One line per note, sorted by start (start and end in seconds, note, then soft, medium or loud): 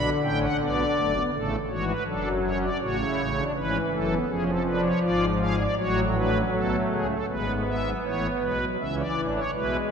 0.00 1.12 D3 medium
0.23 0.46 A1 medium
0.23 0.46 A2 medium
0.23 0.46 C#4 medium
0.23 0.39 G5 medium
0.41 0.57 F#5 medium
0.60 0.83 B1 medium
0.60 0.83 B2 medium
0.60 0.82 B3 medium
0.60 1.23 D5 medium
0.96 1.19 F#1 medium
0.96 1.19 F#2 medium
0.96 1.12 A3 medium
1.15 1.30 B3 medium
1.33 1.56 A1 medium
1.33 1.56 A2 medium
1.33 1.56 C#3 medium
1.33 1.56 A3 medium
1.33 1.56 A4 medium
1.70 1.92 G#1 medium
1.70 1.92 G#2 medium
1.70 1.92 E3 medium
1.70 1.92 F#4 medium
1.70 1.85 C#5 medium
1.87 2.03 B4 medium
2.06 2.69 F#1 medium
2.06 2.69 F#2 medium
2.06 2.69 F#3 medium
2.06 2.29 D4 medium
2.06 2.28 A4 medium
2.43 2.66 C#4 medium
2.43 2.59 C#5 medium
2.62 2.77 D5 medium
2.80 3.03 A1 medium
2.80 3.03 A2 medium
2.80 3.44 C#3 medium
2.80 2.96 F#4 medium
2.80 3.44 C#5 medium
2.98 3.21 E4 medium
3.17 3.40 A1 medium
3.17 3.40 A2 medium
3.36 3.52 D4 medium
3.55 3.78 G#1 medium
3.55 3.77 G#2 medium
3.55 4.18 E3 medium
3.55 3.77 C#4 medium
3.55 3.77 B4 medium
3.91 4.14 F#1 medium
3.91 4.14 F#2 medium
3.91 4.07 A3 medium
3.91 4.14 A4 medium
4.09 4.25 B3 medium
4.27 4.92 F1 medium
4.27 4.92 F2 medium
4.27 5.56 F3 medium
4.27 4.51 C#4 loud
4.27 4.44 G#4 medium
4.47 4.62 A4 medium
4.65 4.88 D4 medium
4.65 4.81 B4 medium
4.83 4.99 C#5 medium
5.02 5.67 G#1 medium
5.02 5.66 G#2 medium
5.02 5.25 F4 medium
5.02 5.25 D5 medium
5.39 5.63 G#4 medium
5.39 5.56 F5 medium
5.58 5.75 D5 medium
5.77 6.42 A1 medium
5.77 6.42 A2 medium
5.77 7.07 F#3 medium
5.77 6.00 F#4 loud
5.77 6.00 C#5 medium
6.14 6.31 D4 loud
6.14 6.38 B4 medium
6.34 6.50 C#4 medium
6.52 6.76 B1 medium
6.52 6.76 B2 medium
6.52 7.18 A3 medium
6.52 6.76 A4 medium
6.90 7.14 C#2 medium
6.90 7.14 C#3 medium
6.90 7.07 G#4 medium
7.09 7.26 A4 medium
7.28 7.93 G#1 medium
7.28 7.93 G#2 medium
7.28 7.45 G#3 medium
7.28 8.58 B3 medium
7.28 7.52 B4 medium
7.47 7.63 A3 medium
7.67 7.83 G#3 medium
7.67 7.90 E5 medium
7.85 8.01 F#3 medium
8.04 8.27 A1 medium
8.04 8.27 A2 medium
8.04 8.27 E3 medium
8.04 8.27 C#5 medium
8.41 8.65 B1 medium
8.41 8.65 B2 medium
8.41 8.58 G#3 medium
8.41 8.65 B4 medium
8.60 8.76 F#3 medium
8.79 9.02 C#2 medium
8.79 9.02 C#3 medium
8.79 9.43 E3 medium
8.79 9.02 C#4 medium
8.79 8.95 E5 medium
8.98 9.21 D5 medium
9.16 9.39 A1 medium
9.16 9.39 A2 medium
9.16 9.39 D4 medium
9.35 9.51 C#5 medium
9.54 9.77 B1 medium
9.54 9.77 B2 medium
9.54 9.91 G#3 medium
9.54 9.77 E4 medium
9.54 9.77 B4 medium